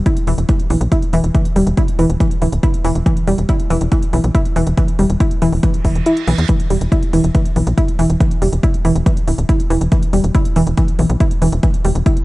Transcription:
0.06 E4, kick, closed hi-hat
0.17 closed hi-hat
0.27 E1 E3, open hi-hat
0.38 E1, closed hi-hat
0.49 E3, kick, closed hi-hat
0.60 closed hi-hat
0.70 B1 E3, open hi-hat
0.81 B1, closed hi-hat
0.92 E4, kick, closed hi-hat
1.02 closed hi-hat
1.13 E1 E3, open hi-hat
1.24 E1, closed hi-hat
1.35 E3, kick, closed hi-hat
1.45 closed hi-hat
1.56 E1 G3, open hi-hat
1.67 E1, closed hi-hat
1.77 E4, kick, closed hi-hat
1.88 closed hi-hat
1.99 E1 E3, open hi-hat
2.10 E1, closed hi-hat
2.20 E3, kick, closed hi-hat
2.31 closed hi-hat
2.42 D1 E3, open hi-hat
2.52 D1, closed hi-hat
2.63 E4, kick, closed hi-hat
2.74 closed hi-hat
2.85 E1 E3, open hi-hat
2.95 E1, closed hi-hat
3.06 E3, kick, closed hi-hat
3.17 closed hi-hat
3.27 E1 G3, open hi-hat
3.38 E1, closed hi-hat
3.49 E4, kick, closed hi-hat
3.60 closed hi-hat
3.70 E1 E3, open hi-hat
3.81 E1, closed hi-hat
3.92 E3, kick, closed hi-hat
4.03 closed hi-hat
4.13 B1 E3, open hi-hat
4.24 B1, closed hi-hat
4.35 E4, kick, closed hi-hat
4.45 closed hi-hat
4.56 E1 E3, open hi-hat
4.67 E1, closed hi-hat
4.77 E3, kick, closed hi-hat
4.88 closed hi-hat
4.99 E1 G3, open hi-hat
5.10 E1, closed hi-hat
5.20 E4, kick, closed hi-hat
5.31 closed hi-hat
5.42 E1 E3, open hi-hat
5.53 E1, open hi-hat
5.63 E3, kick, closed hi-hat, reverse cymbal
5.74 closed hi-hat
5.85 E1 E3, kick, open hi-hat
5.95 E1, closed hi-hat
6.06 E4, closed hi-hat
6.17 closed hi-hat
6.27 B1 E3, open hi-hat
6.38 E2, closed hi-hat
6.49 E3, kick, closed hi-hat
6.60 closed hi-hat
6.70 E1 G3, open hi-hat
6.81 E1, closed hi-hat
6.92 E4, kick, closed hi-hat
7.03 closed hi-hat
7.13 E1 E3, open hi-hat
7.24 E1, closed hi-hat
7.35 E3, kick, closed hi-hat
7.46 closed hi-hat
7.56 B1 E3, open hi-hat
7.67 B1, closed hi-hat
7.78 E4, kick, closed hi-hat
7.88 closed hi-hat
7.99 E1 E3, open hi-hat
8.10 E1, closed hi-hat
8.20 E3, kick, closed hi-hat
8.31 closed hi-hat
8.42 E1 G3, open hi-hat
8.53 E1, closed hi-hat
8.63 E4, kick, closed hi-hat
8.74 closed hi-hat
8.85 E1 E3, open hi-hat
8.96 E1, closed hi-hat
9.06 E3, kick, closed hi-hat
9.17 closed hi-hat
9.28 D1 E3, open hi-hat
9.38 D1, closed hi-hat
9.49 E4, kick, closed hi-hat
9.60 closed hi-hat
9.70 E1 E3, open hi-hat
9.81 E1, closed hi-hat
9.92 E3, kick, closed hi-hat
10.03 closed hi-hat
10.13 E1 G3, open hi-hat
10.24 E1, closed hi-hat
10.35 E4, kick, closed hi-hat
10.45 closed hi-hat
10.56 E1 E3, open hi-hat
10.67 E1, closed hi-hat
10.77 E3, kick, closed hi-hat
10.88 closed hi-hat
10.99 B1 E3, open hi-hat
11.10 B1, closed hi-hat
11.20 E4, kick, closed hi-hat
11.31 closed hi-hat
11.42 E1 E3, open hi-hat
11.52 E1, closed hi-hat
11.63 E3, kick, closed hi-hat
11.74 closed hi-hat
11.85 E1 G3, open hi-hat
11.95 E1, closed hi-hat
12.06 E4, kick, closed hi-hat
12.17 closed hi-hat

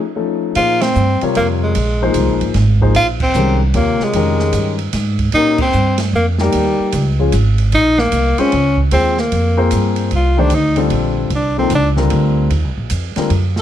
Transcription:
0.16 F3 A3 C#4 D#4 A4
0.55 A#2 F3 A#3 D#4 F4 G#4 C5, ride
0.81 C4, snare, ride
0.95 G2, hi-hat pedal
1.21 C3 G3 F4 A#4 C#5, muted upright bass stroke, ride
1.35 F2 A#3, ride
1.63 G#3
1.75 A#1, ride
2.02 F3 A#3 D#4 G#4 C5
2.14 C2, hi-hat pedal, ride
2.29 A#1
2.41 G#1, ride
2.54 G#1, snare, ride
2.81 F3 A#3 D#4 G#4 C5, kick
2.95 A#1 F4, ride
3.20 C4, kick, crash
3.34 C2 D#3 G#3 C#4 G4 A#4, hi-hat pedal
3.74 D#2 C3 A#3 F4 G4 A#4 C#5, ride
4.00 G#3, muted upright bass stroke, snare
4.13 F2 D#3 G#3 C#4 G4 A#4, ride
4.39 snare
4.53 G2, hi-hat pedal, ride
4.79 ride
4.93 G#2, snare, hi-hat pedal, ride
5.19 kick, ride
5.32 A#2 A#3 C#4 D#4 G4 A#4 C#5, ride
5.58 C4, kick, crash
5.72 G2, hi-hat pedal
5.98 snare, ride
6.13 F2 A#3
6.38 G3 A#3 D#4 G4 A#4, snare
6.52 D#2, ride
6.79 muted upright bass stroke
6.92 C#2, hi-hat pedal, ride
7.19 F3 G#3 C#4 F4 G#4
7.32 G#1, hi-hat pedal, ride
7.58 ride
7.72 A#1 D#4, ride
7.98 A#3, snare
8.12 C2, hi-hat pedal, ride
8.38 G#3 C4 C#4 F4 G#4 C5, muted upright bass stroke, ride
8.52 C#2, ride
8.78 kick
8.91 D#2 G#3 C4 F4 G#4 C5, ride
9.18 A#3, snare
9.32 F2, ride
9.57 A#3 C4 F4 G#4 C5
9.71 G2, hi-hat pedal, ride
9.96 ride
10.11 C2, ride
10.16 F4
10.37 D#3 A3 D4 G4 C5
10.50 D2, hi-hat pedal, ride
10.55 D#4
10.76 D3 G3 C4 F4 A4, ride
10.90 A#1, ride
11.30 C2, ride
11.35 D4
11.58 C3 F3 A#3 C4 D#4 A4
11.70 C#2, hi-hat pedal, ride
11.75 D4
11.96 D3 G3 C4 F4 A#4, snare
12.10 D2, ride
12.50 D#2, ride
12.64 C2
12.77 A#1
12.90 F2, hi-hat pedal, ride
13.16 D3 G3 C4 F4 A#4, muted upright bass stroke, snare, ride
13.30 F#2, ride
13.56 snare

